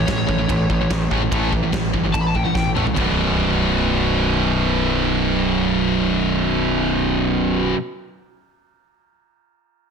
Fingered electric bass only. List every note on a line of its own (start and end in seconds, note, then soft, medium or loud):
0.08 0.24 A1 medium
0.29 0.45 A1 medium
0.50 0.66 A1 medium
0.70 0.86 A1 medium
0.90 1.07 A1 medium
1.11 1.28 A1 medium
1.32 1.65 A1 medium
1.73 1.90 A1 medium
1.94 2.10 G1 medium
2.14 2.47 A1 medium
2.55 2.88 A1 medium
2.97 7.72 B0 medium